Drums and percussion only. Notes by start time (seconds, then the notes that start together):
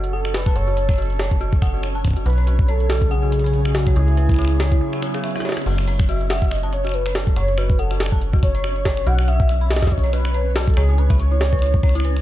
0.04 closed hi-hat
0.25 finger snap, closed hi-hat
0.34 snare, closed hi-hat
0.46 finger snap, kick, closed hi-hat
0.56 closed hi-hat
0.68 closed hi-hat
0.77 closed hi-hat
0.89 finger snap, kick, closed hi-hat
0.91 closed hi-hat
0.94 closed hi-hat
0.96 closed hi-hat
0.98 closed hi-hat
1.02 closed hi-hat
1.05 closed hi-hat
1.10 closed hi-hat
1.12 closed hi-hat
1.16 snare, closed hi-hat
1.19 closed hi-hat
1.31 kick, closed hi-hat
1.41 closed hi-hat
1.53 kick, closed hi-hat
1.62 finger snap, kick, closed hi-hat
1.83 finger snap, closed hi-hat
1.95 closed hi-hat
2.05 finger snap, kick, closed hi-hat
2.08 kick
2.11 kick
2.14 kick, closed hi-hat
2.26 closed hi-hat
2.30 closed hi-hat
2.33 closed hi-hat
2.38 closed hi-hat
2.40 closed hi-hat
2.44 closed hi-hat
2.47 closed hi-hat
2.59 kick
2.68 closed hi-hat
2.80 closed hi-hat
2.90 snare
3.02 kick, closed hi-hat
3.11 closed hi-hat
3.32 closed hi-hat
3.39 closed hi-hat
3.44 closed hi-hat
3.46 closed hi-hat
3.53 closed hi-hat
3.65 finger snap, closed hi-hat
3.75 snare, closed hi-hat
3.87 finger snap, kick, closed hi-hat
3.96 closed hi-hat
4.08 closed hi-hat
4.17 closed hi-hat
4.29 finger snap, kick, closed hi-hat
4.32 finger snap
4.34 finger snap, closed hi-hat
4.36 finger snap
4.39 finger snap, closed hi-hat
4.42 finger snap
4.45 finger snap, closed hi-hat
4.48 finger snap, closed hi-hat
4.60 snare, closed hi-hat
4.72 kick, closed hi-hat
4.81 closed hi-hat
4.93 finger snap, closed hi-hat
5.02 finger snap, closed hi-hat
5.14 finger snap, closed hi-hat
5.24 finger snap, closed hi-hat
5.31 closed hi-hat
5.36 cross-stick, closed hi-hat
5.38 cross-stick, closed hi-hat
5.40 cross-stick, closed hi-hat
5.45 cross-stick, snare
5.49 snare
5.52 snare
5.57 cross-stick, closed hi-hat
5.62 closed hi-hat
5.66 closed hi-hat, crash
5.72 closed hi-hat
5.78 finger snap, closed hi-hat
5.88 closed hi-hat
5.99 finger snap, kick, closed hi-hat
6.09 closed hi-hat
6.21 closed hi-hat
6.30 finger snap, snare, closed hi-hat
6.42 kick, closed hi-hat
6.44 closed hi-hat
6.48 finger snap, closed hi-hat
6.51 closed hi-hat
6.55 closed hi-hat
6.58 closed hi-hat
6.63 closed hi-hat
6.73 closed hi-hat
6.85 finger snap, closed hi-hat
6.89 finger snap
6.92 finger snap, closed hi-hat
7.06 finger snap, closed hi-hat
7.15 snare, closed hi-hat
7.27 kick, closed hi-hat
7.36 finger snap, closed hi-hat
7.48 closed hi-hat
7.58 finger snap, closed hi-hat
7.70 kick, closed hi-hat
7.79 closed hi-hat
7.91 finger snap, closed hi-hat
8.00 snare, closed hi-hat
8.06 finger snap
8.12 kick, closed hi-hat
8.22 closed hi-hat
8.33 kick, closed hi-hat
8.43 finger snap, kick, closed hi-hat
8.55 closed hi-hat
8.64 finger snap
8.76 closed hi-hat
8.85 kick, snare, closed hi-hat
8.97 finger snap
9.07 closed hi-hat
9.19 finger snap, closed hi-hat
9.21 closed hi-hat
9.23 closed hi-hat
9.26 closed hi-hat
9.28 closed hi-hat
9.40 kick, closed hi-hat
9.49 finger snap, closed hi-hat
9.61 closed hi-hat
9.70 snare, closed hi-hat
9.76 finger snap, snare
9.82 kick, snare
9.87 kick, snare
9.92 kick, closed hi-hat
9.98 kick, closed hi-hat
10.04 closed hi-hat
10.06 closed hi-hat
10.13 finger snap, closed hi-hat
10.25 finger snap
10.34 closed hi-hat
10.56 finger snap, snare, closed hi-hat
10.68 kick, closed hi-hat
10.70 closed hi-hat
10.74 finger snap, closed hi-hat
10.77 closed hi-hat
10.81 closed hi-hat
10.84 closed hi-hat
10.89 closed hi-hat
10.98 closed hi-hat
11.10 finger snap, kick, closed hi-hat
11.20 closed hi-hat
11.31 closed hi-hat
11.41 snare, closed hi-hat
11.53 kick, closed hi-hat
11.59 finger snap, closed hi-hat
11.62 closed hi-hat
11.66 closed hi-hat
11.74 kick
11.83 finger snap, kick
11.89 finger snap
11.95 closed hi-hat
12.00 finger snap
12.05 closed hi-hat
12.17 finger snap, closed hi-hat